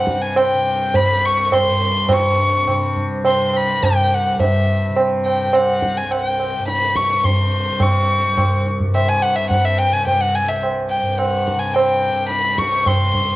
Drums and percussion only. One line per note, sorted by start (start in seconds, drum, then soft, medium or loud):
0.07 tabla ke medium
0.36 tabla na medium
0.94 tabla tin medium
0.94 tabla ge medium
1.52 tabla na medium
1.52 tabla ge medium
1.81 tabla te medium
2.09 tabla na medium
2.09 tabla ge medium
2.67 tabla na medium
2.67 tabla ge medium
2.96 tabla ge medium
3.25 tabla na medium
3.53 tabla na medium
3.83 tabla tin medium
3.83 tabla ge medium
4.40 tabla tin medium
4.40 tabla ge medium
4.96 tabla na medium
5.26 tabla na medium
5.53 tabla na medium
5.82 tabla ke medium
6.11 tabla na medium
6.40 tabla na medium
6.68 tabla te medium
6.82 tabla te medium
6.96 tabla ke soft
7.10 tabla te medium
7.24 tabla tin medium
7.24 tabla ge medium
7.80 tabla na medium
7.80 tabla ge medium
8.38 tabla na medium
8.38 tabla ge medium
8.66 tabla te medium
8.80 tabla ge medium
8.95 tabla na medium
9.51 tabla tin medium
9.51 tabla ge medium
10.07 tabla tin medium
10.07 tabla ge medium
10.63 tabla na medium
11.19 tabla na medium
11.48 tabla ke medium
11.76 tabla na medium
12.31 tabla te medium
12.45 tabla te medium
12.58 tabla ke medium
12.73 tabla te medium
12.86 tabla na medium
12.86 tabla ge medium
13.14 tabla ge soft